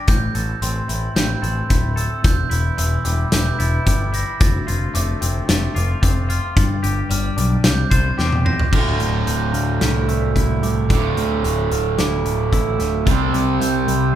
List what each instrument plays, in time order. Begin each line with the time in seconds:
Already playing: clean electric guitar G3 G4
0.08 picked electric bass A1, clean electric guitar A2, glockenspiel G6, kick, closed hi-hat
0.35 picked electric bass A1, clean electric guitar A4, closed hi-hat
0.62 picked electric bass A1, clean electric guitar C4, glockenspiel C6, closed hi-hat
0.88 picked electric bass A1, clean electric guitar E4, closed hi-hat
1.15 picked electric bass A1, clean electric guitar C4, glockenspiel G6, snare, closed hi-hat
1.42 picked electric bass A1, clean electric guitar A4, glockenspiel C6, closed hi-hat
1.69 picked electric bass D1, clean electric guitar E4, kick, closed hi-hat
1.96 clean electric guitar A4, glockenspiel E6, closed hi-hat
2.23 picked electric bass E1, clean electric guitar E2, glockenspiel G6, kick, closed hi-hat
2.50 picked electric bass E1, clean electric guitar E4, closed hi-hat
2.77 picked electric bass E1, clean electric guitar E3, glockenspiel E6, closed hi-hat
3.04 picked electric bass E1, clean electric guitar G3, closed hi-hat
3.32 picked electric bass E1, clean electric guitar E3, glockenspiel G6, snare, closed hi-hat
3.59 picked electric bass E1, clean electric guitar E4, glockenspiel A6, closed hi-hat
3.86 picked electric bass G1, clean electric guitar G3, kick, closed hi-hat
4.13 clean electric guitar E4, glockenspiel A#6, closed hi-hat
4.40 picked electric bass F1, clean electric guitar D2, glockenspiel A6, kick, closed hi-hat
4.67 picked electric bass F1, clean electric guitar F4, closed hi-hat
4.94 picked electric bass F1, clean electric guitar A3, glockenspiel D6, closed hi-hat
5.21 picked electric bass F1, clean electric guitar C4, closed hi-hat
5.48 picked electric bass F1, clean electric guitar A3, glockenspiel A6, snare, closed hi-hat
5.75 picked electric bass F1, clean electric guitar F4, glockenspiel D6, closed hi-hat
6.02 picked electric bass F1, clean electric guitar C4, kick, closed hi-hat
6.29 clean electric guitar F4, glockenspiel F6, closed hi-hat
6.56 picked electric bass G1, clean electric guitar G2, glockenspiel A6, kick, closed hi-hat
6.83 picked electric bass G1, clean electric guitar G4, closed hi-hat
7.10 picked electric bass G1, clean electric guitar G3, glockenspiel F6, closed hi-hat
7.37 picked electric bass B1, clean electric guitar D4, closed hi-hat
7.64 picked electric bass C2, clean electric guitar C3, glockenspiel G6, snare, closed hi-hat
7.91 picked electric bass C2, clean electric guitar C5, glockenspiel A6, kick, closed hi-hat
8.18 picked electric bass E2, clean electric guitar G4, snare
8.32 high tom
8.45 clean electric guitar C5, glockenspiel A#6, mid tom
8.59 floor tom
8.71 picked electric bass D1, overdriven electric guitar D2 A2 D3, clean electric guitar D2, glockenspiel F6, kick, crash
8.99 picked electric bass D1, clean electric guitar A2, closed hi-hat
9.27 picked electric bass D1, clean electric guitar A2, glockenspiel G6, closed hi-hat
9.54 picked electric bass D2, clean electric guitar D3, glockenspiel F6, closed hi-hat
9.81 picked electric bass C2, clean electric guitar E4, glockenspiel F6, snare, closed hi-hat
10.08 clean electric guitar A3, glockenspiel E6, closed hi-hat
10.36 picked electric bass C2, clean electric guitar E4, kick, closed hi-hat
10.63 picked electric bass C2, clean electric guitar A3, glockenspiel D6, closed hi-hat
10.89 picked electric bass D1, overdriven electric guitar D2 A2, clean electric guitar D2, kick, closed hi-hat
10.93 overdriven electric guitar D3
11.17 picked electric bass D2, clean electric guitar A2, glockenspiel F6, closed hi-hat
11.43 picked electric bass D1, clean electric guitar A2, closed hi-hat
11.71 picked electric bass D1, clean electric guitar D3, glockenspiel F6, closed hi-hat
11.98 picked electric bass D1, clean electric guitar E4, glockenspiel D6, snare, closed hi-hat
12.25 picked electric bass D1, clean electric guitar A3, closed hi-hat
12.52 picked electric bass A1, clean electric guitar E4, glockenspiel E6, kick, closed hi-hat
12.79 picked electric bass D1, clean electric guitar A3, snare, closed hi-hat
13.05 picked electric bass C2, clean electric guitar C3, overdriven electric guitar C3 G3, glockenspiel E6, kick, closed hi-hat
13.09 overdriven electric guitar C4
13.33 picked electric bass C2, clean electric guitar G3, closed hi-hat
13.60 picked electric bass C2, clean electric guitar C4, glockenspiel G6, closed hi-hat
13.87 picked electric bass C2, clean electric guitar E4, glockenspiel E6, closed hi-hat